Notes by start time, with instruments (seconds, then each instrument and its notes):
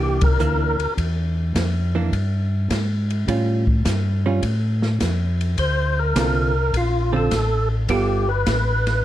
Already playing: tonewheel organ C2 G4, hollow-body jazz guitar E3 A#3 D4
0.21 tonewheel organ A#4, kick, ride
0.39 tonewheel organ D2, hollow-body jazz guitar E3 A#3 D4, hi-hat pedal
0.78 tonewheel organ D2, ride
0.97 tonewheel organ E2, kick, ride
1.54 tonewheel organ F2, kick, snare, hi-hat pedal, ride
1.95 hollow-body jazz guitar E3 A#3 D4
2.12 tonewheel organ G2, kick, ride
2.70 tonewheel organ G#2, kick, snare, hi-hat pedal, ride
3.10 ride
3.27 tonewheel organ A2, hollow-body jazz guitar G3 C#4 F4, kick, ride
3.67 kick
3.85 tonewheel organ G2, kick, snare, hi-hat pedal, ride
4.26 hollow-body jazz guitar G3 C#4 F4
4.43 tonewheel organ A2, kick, ride
4.82 snare
5.00 tonewheel organ F2, kick, snare, hi-hat pedal, ride
5.41 ride
5.58 tonewheel organ D2 C5, kick, ride
5.99 tonewheel organ A#4
6.15 tonewheel organ C2, hollow-body jazz guitar D3 C4 F4 A4, kick, snare, hi-hat pedal, ride
6.73 tonewheel organ A#1, kick, ride
6.77 tonewheel organ F4
7.12 hollow-body jazz guitar D3 C4 F4 A4, tonewheel organ A4
7.31 tonewheel organ A1, kick, snare, hi-hat pedal, ride
7.89 tonewheel organ G1 G4, hollow-body jazz guitar G3 B3 F4 A4, kick, ride
8.29 tonewheel organ B4
8.46 tonewheel organ A1, kick, snare, hi-hat pedal, ride
8.87 snare, ride